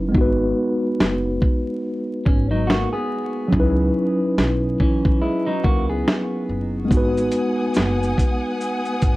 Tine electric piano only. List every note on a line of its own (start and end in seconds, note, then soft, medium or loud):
0.00 0.13 F#3 soft
0.00 0.14 C#4 soft
0.00 0.13 D#4 soft
0.00 0.16 E4 soft
0.00 0.16 B4 medium
0.09 3.46 G#3 medium
0.09 3.47 B3 medium
0.15 3.49 D#4 medium
0.15 3.50 F#4 medium
0.21 3.52 B4 medium
3.48 6.84 F#3 medium
3.48 6.86 C#4 medium
3.54 6.87 D#4 medium
3.54 6.89 E4 medium
3.60 6.90 B4 medium
6.85 9.17 G#3 medium
6.85 9.17 B3 medium
6.91 9.17 D#4 medium
6.91 9.17 F#4 medium
6.97 9.17 B4 medium